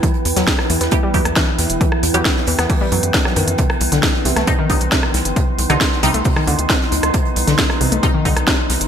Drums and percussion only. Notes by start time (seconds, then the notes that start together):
0.03 kick, closed hi-hat
0.14 closed hi-hat
0.25 closed hi-hat, open hi-hat
0.36 snare, closed hi-hat
0.47 kick, snare, closed hi-hat
0.59 cross-stick, snare
0.70 closed hi-hat, open hi-hat
0.81 snare, closed hi-hat
0.91 kick, closed hi-hat
1.14 kick, closed hi-hat, open hi-hat
1.25 cross-stick, closed hi-hat
1.36 kick, snare, closed hi-hat
1.59 snare, closed hi-hat, open hi-hat
1.70 closed hi-hat
1.81 kick, closed hi-hat
1.92 cross-stick
2.03 closed hi-hat, open hi-hat
2.14 closed hi-hat
2.25 kick, snare, closed hi-hat
2.37 snare
2.47 closed hi-hat, open hi-hat
2.59 cross-stick, snare, closed hi-hat
2.69 kick, closed hi-hat, open hi-hat
2.92 closed hi-hat, open hi-hat
3.03 closed hi-hat
3.14 kick, snare, closed hi-hat
3.25 cross-stick, snare
3.36 closed hi-hat, open hi-hat
3.48 closed hi-hat
3.58 kick, closed hi-hat
3.70 cross-stick, closed hi-hat
3.80 closed hi-hat, open hi-hat
3.92 snare, closed hi-hat
4.03 kick, snare, closed hi-hat
4.14 snare
4.25 closed hi-hat, open hi-hat
4.36 cross-stick, snare, closed hi-hat
4.47 kick, closed hi-hat
4.70 kick, closed hi-hat, open hi-hat
4.81 closed hi-hat
4.92 kick, snare, closed hi-hat
5.03 cross-stick
5.14 snare, closed hi-hat, open hi-hat
5.25 closed hi-hat
5.36 kick, closed hi-hat
5.59 closed hi-hat, open hi-hat
5.70 cross-stick, closed hi-hat
5.81 kick, snare, closed hi-hat
5.92 snare
6.03 closed hi-hat, open hi-hat
6.14 closed hi-hat
6.24 kick, closed hi-hat, open hi-hat
6.36 cross-stick
6.47 closed hi-hat, open hi-hat
6.59 closed hi-hat
6.70 kick, snare, closed hi-hat
6.81 snare
6.92 closed hi-hat, open hi-hat
7.03 cross-stick, closed hi-hat
7.14 kick, closed hi-hat
7.25 closed hi-hat
7.36 closed hi-hat, open hi-hat
7.47 snare, closed hi-hat
7.58 kick, snare, closed hi-hat
7.69 cross-stick, snare
7.81 open hi-hat
7.92 closed hi-hat
8.03 kick, closed hi-hat
8.25 kick, closed hi-hat, open hi-hat
8.37 cross-stick, closed hi-hat
8.47 kick, snare, closed hi-hat
8.70 snare, closed hi-hat, open hi-hat
8.81 closed hi-hat